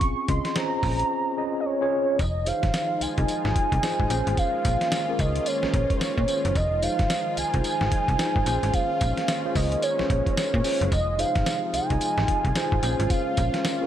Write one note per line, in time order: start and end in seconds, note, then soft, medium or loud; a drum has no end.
0.00 0.15 A#1 medium
0.00 0.22 C4 medium
0.00 0.21 C#4 medium
0.00 0.21 F4 medium
0.00 0.21 G#4 medium
0.00 0.31 C#6 loud
0.00 kick loud
0.00 closed hi-hat medium
0.28 0.41 C#2 medium
0.28 0.52 C#4 medium
0.28 0.52 F4 medium
0.28 0.52 G#4 medium
0.28 0.53 D#5 medium
0.28 0.58 C6 loud
0.28 kick loud
0.28 closed hi-hat medium
0.45 snare medium
0.45 closed hi-hat soft
0.55 0.79 C#4 medium
0.55 0.79 F4 medium
0.55 0.80 G#4 medium
0.55 0.80 C5 medium
0.55 1.59 A#5 loud
0.55 snare loud
0.55 closed hi-hat medium
0.83 1.04 A#1 loud
0.83 1.30 C#4 medium
0.83 1.31 F4 medium
0.83 1.31 G#4 medium
0.83 1.31 C5 medium
0.83 kick medium
0.83 open hi-hat medium
0.99 closed hi-hat soft
1.37 1.73 C#4 medium
1.37 1.73 F4 medium
1.37 1.73 G#4 medium
1.37 1.73 D#5 loud
1.60 1.67 D#5 medium
1.66 2.22 C#5 loud
1.81 2.14 C#4 loud
1.81 2.14 F4 loud
1.81 2.14 G#4 loud
1.81 2.14 C#5 loud
2.19 2.53 F1 loud
2.19 10.88 D#3 medium
2.19 4.08 F3 medium
2.19 8.43 G#3 medium
2.19 4.08 D#4 medium
2.19 4.08 F4 medium
2.19 2.49 D#5 loud
2.19 kick loud
2.19 closed hi-hat medium
2.19 tambourine medium
2.46 3.04 D#4 medium
2.46 3.04 F4 medium
2.46 3.04 G#4 medium
2.46 3.04 C5 medium
2.46 3.03 F5 loud
2.46 closed hi-hat medium
2.46 tambourine medium
2.63 2.71 G#1 medium
2.63 kick medium
2.63 snare medium
2.63 closed hi-hat soft
2.74 snare loud
2.74 closed hi-hat medium
2.74 tambourine medium
3.01 3.08 C2 medium
3.01 4.38 G#5 loud
3.01 closed hi-hat medium
3.01 tambourine medium
3.17 3.26 C2 medium
3.17 3.74 D#4 medium
3.17 3.74 F4 medium
3.17 3.74 G#4 medium
3.17 3.75 D#5 medium
3.17 kick medium
3.17 closed hi-hat soft
3.28 closed hi-hat medium
3.28 tambourine medium
3.45 3.53 G#1 loud
3.45 snare medium
3.56 kick loud
3.56 closed hi-hat medium
3.72 3.80 C2 loud
3.72 kick medium
3.72 closed hi-hat soft
3.82 4.10 D#4 loud
3.82 4.09 F4 medium
3.82 4.09 G#4 medium
3.82 4.10 C5 loud
3.82 snare loud
3.82 closed hi-hat medium
3.82 tambourine medium
4.00 4.08 G#1 loud
4.00 kick medium
4.10 4.23 A#1 loud
4.10 6.53 A#3 medium
4.10 4.90 C#4 loud
4.10 6.53 C#4 medium
4.10 6.53 F4 loud
4.10 4.90 F4 medium
4.10 4.91 G#4 medium
4.10 4.91 C5 loud
4.10 closed hi-hat medium
4.10 tambourine medium
4.27 4.35 G#1 loud
4.27 closed hi-hat medium
4.37 5.21 F5 loud
4.37 kick loud
4.37 closed hi-hat medium
4.37 tambourine medium
4.65 4.78 A#1 loud
4.65 kick loud
4.65 closed hi-hat medium
4.65 tambourine medium
4.81 snare medium
4.81 closed hi-hat medium
4.92 snare loud
4.92 closed hi-hat medium
4.92 tambourine medium
5.08 5.52 C#4 medium
5.08 5.52 F4 medium
5.08 5.52 G#4 medium
5.08 5.53 A#4 medium
5.19 5.40 C#2 loud
5.19 5.49 D#5 medium
5.19 kick loud
5.19 closed hi-hat medium
5.19 tambourine medium
5.36 closed hi-hat soft
5.46 5.74 C#5 medium
5.46 closed hi-hat medium
5.46 tambourine medium
5.63 5.67 A#1 medium
5.63 6.19 C#4 medium
5.63 6.19 F4 medium
5.63 6.20 G#4 medium
5.63 6.20 C5 medium
5.63 snare medium
5.74 5.86 A#1 loud
5.74 5.94 C#5 medium
5.74 kick loud
5.74 closed hi-hat medium
5.90 kick loud
5.90 closed hi-hat soft
5.97 6.03 C5 medium
6.01 6.57 C#5 medium
6.01 snare loud
6.01 closed hi-hat medium
6.01 tambourine loud
6.18 6.26 A#2 loud
6.18 kick medium
6.28 6.55 C#4 medium
6.28 6.55 F4 medium
6.28 6.56 G#4 medium
6.28 6.56 C5 medium
6.28 closed hi-hat medium
6.28 tambourine medium
6.45 6.53 F#1 loud
6.45 closed hi-hat medium
6.55 6.89 F1 loud
6.55 8.45 F3 medium
6.55 8.45 D#4 medium
6.55 10.88 F4 medium
6.55 6.84 D#5 loud
6.55 kick loud
6.55 closed hi-hat medium
6.55 tambourine medium
6.82 7.40 D#4 medium
6.82 7.40 F4 medium
6.82 7.41 G#4 medium
6.82 7.41 C5 medium
6.82 7.37 F5 loud
6.82 closed hi-hat medium
6.82 tambourine medium
6.99 7.08 G#1 medium
6.99 kick loud
6.99 snare medium
6.99 closed hi-hat soft
7.10 snare loud
7.10 closed hi-hat medium
7.10 tambourine loud
7.37 7.44 C2 soft
7.37 8.76 G#5 loud
7.37 closed hi-hat medium
7.37 tambourine medium
7.53 7.62 C2 medium
7.53 8.10 D#4 medium
7.53 8.10 F4 medium
7.53 8.11 G#4 medium
7.53 8.11 C5 medium
7.53 kick medium
7.53 closed hi-hat soft
7.64 closed hi-hat medium
7.64 tambourine medium
7.81 7.89 G#1 loud
7.81 snare medium
7.92 kick loud
7.92 closed hi-hat medium
8.08 8.17 C2 loud
8.08 kick loud
8.08 closed hi-hat soft
8.19 8.46 D#4 loud
8.19 8.45 F4 medium
8.19 8.46 G#4 medium
8.19 8.46 C5 loud
8.19 snare loud
8.19 closed hi-hat medium
8.19 tambourine loud
8.36 8.44 G#1 medium
8.36 kick medium
8.46 8.59 A#1 medium
8.46 12.79 G#3 medium
8.46 10.89 A#3 medium
8.46 9.26 C#4 medium
8.46 10.89 C#4 medium
8.46 9.27 F4 medium
8.46 9.27 G#4 medium
8.46 9.27 C5 loud
8.46 closed hi-hat medium
8.46 tambourine medium
8.63 8.71 G#1 loud
8.63 closed hi-hat medium
8.74 9.57 F5 loud
8.74 kick loud
8.74 closed hi-hat medium
8.74 tambourine medium
9.01 9.14 A#1 loud
9.01 kick loud
9.01 closed hi-hat medium
9.01 tambourine medium
9.17 snare medium
9.17 closed hi-hat soft
9.28 snare loud
9.28 closed hi-hat medium
9.28 tambourine loud
9.45 9.88 C#4 medium
9.45 9.89 F4 medium
9.45 9.89 G#4 medium
9.45 9.89 C5 medium
9.55 9.76 C#2 loud
9.55 9.82 D#5 medium
9.55 kick medium
9.55 open hi-hat medium
9.55 tambourine medium
9.72 closed hi-hat medium
9.82 10.08 C#5 medium
9.82 closed hi-hat medium
9.82 tambourine medium
9.99 10.04 A#1 soft
9.99 10.56 C#4 medium
9.99 10.56 F4 medium
9.99 10.56 G#4 medium
9.99 10.56 C5 medium
9.99 snare medium
10.10 10.23 A#1 loud
10.10 10.36 C#5 medium
10.10 kick loud
10.10 closed hi-hat medium
10.26 kick medium
10.26 closed hi-hat soft
10.37 10.88 C#5 medium
10.37 snare loud
10.37 closed hi-hat medium
10.37 tambourine loud
10.54 10.62 A#2 loud
10.54 kick medium
10.64 10.92 C#4 medium
10.64 10.92 F4 medium
10.64 10.92 G#4 medium
10.64 10.92 C5 medium
10.64 open hi-hat medium
10.64 tambourine medium
10.81 10.89 F#1 loud
10.81 closed hi-hat soft
10.92 11.25 F1 loud
10.92 12.81 C3 medium
10.92 12.81 F3 medium
10.92 12.81 D#4 medium
10.92 13.87 F4 medium
10.92 11.21 D#5 loud
10.92 kick loud
10.92 closed hi-hat medium
10.92 tambourine medium
11.18 11.76 D#4 medium
11.18 11.77 F4 medium
11.18 11.77 G#4 medium
11.18 11.77 C5 medium
11.18 11.74 F5 loud
11.18 closed hi-hat medium
11.18 tambourine medium
11.35 11.44 G#1 medium
11.35 kick loud
11.35 snare medium
11.35 closed hi-hat medium
11.46 snare loud
11.46 closed hi-hat medium
11.46 tambourine loud
11.74 11.80 C2 soft
11.74 13.12 G#5 loud
11.74 closed hi-hat medium
11.74 tambourine medium
11.90 11.99 C2 medium
11.90 12.47 D#4 medium
11.90 12.47 F4 medium
11.90 12.47 G#4 medium
11.90 12.47 D#5 medium
11.90 kick medium
11.90 closed hi-hat soft
12.01 closed hi-hat medium
12.01 tambourine medium
12.18 12.26 G#1 loud
12.18 snare medium
12.28 kick loud
12.28 closed hi-hat medium
12.45 12.53 C2 loud
12.45 kick loud
12.45 closed hi-hat soft
12.55 12.83 D#4 loud
12.55 12.82 F4 medium
12.55 12.82 G#4 loud
12.55 12.82 C5 loud
12.55 snare loud
12.55 closed hi-hat medium
12.55 tambourine medium
12.72 12.80 G#1 medium
12.72 kick medium
12.82 12.96 A#1 loud
12.82 13.87 C#3 medium
12.82 13.87 G#3 medium
12.82 13.87 A#3 medium
12.82 13.63 C#4 loud
12.82 13.87 C#4 medium
12.82 13.63 F4 medium
12.82 13.63 G#4 medium
12.82 13.63 C5 loud
12.82 closed hi-hat medium
12.82 tambourine medium
13.00 13.08 G#1 loud
13.00 closed hi-hat soft
13.10 13.87 F5 loud
13.10 kick loud
13.10 closed hi-hat medium
13.10 tambourine medium
13.37 13.50 A#1 loud
13.37 kick medium
13.37 closed hi-hat medium
13.37 tambourine medium
13.54 snare medium
13.54 closed hi-hat soft
13.65 snare loud
13.65 closed hi-hat medium
13.65 tambourine loud
13.81 13.87 C#4 medium
13.81 13.87 F4 medium
13.81 13.87 G#4 medium
13.81 13.87 A#4 medium